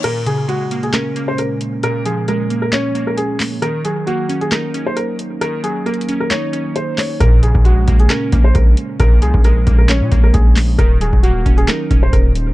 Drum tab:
CC |x-----------------------------------------------|------------------------------------------------|------------------------------------------------|------------------------------------------------|
HH |x-----x-----x-----x--x--x-----x-----x-----x-----|x-----x-----x-----x-----x-----x-----x-----o-----|x-----x-----x-----x--x--x-----x-----x-----x-----|x-----x-----x-x-x-x-----x-----x-----x-----o-----|
CP |------------------------x-----------------------|------------------------x-----------------x-----|------------------------x-----------------------|------------------------x-----------------x-----|
SD |------------------------o-----------------------|------------------------o-----------------o-----|------------------------o-----------------------|------------------------o-----------------o-----|
BD |------------------------------------------------|------------------------------------------------|------------------------------------------------|------------------------------------------------|

CC |------------------------------------------------|------------------------------------------------|------------------------------------------------|
HH |x-----x-----x-----x--x--x-----x-----x-----x-----|x-----x-----x-----x-----x-----x-----x-----o-----|x-----x-----x-----x--x--x-----x-----x-----x-----|
CP |------------------------x-----------------------|------------------------x-----------------x-----|------------------------x-----------------------|
SD |------------------------o-----------------------|------------------------o-----------------o-----|------------------------o-----------------------|
BD |o--------o--------o-----------o-----o-----------|o--------o--------o-----------o-----o-----------|o--------o--------o-----------o-----o-----------|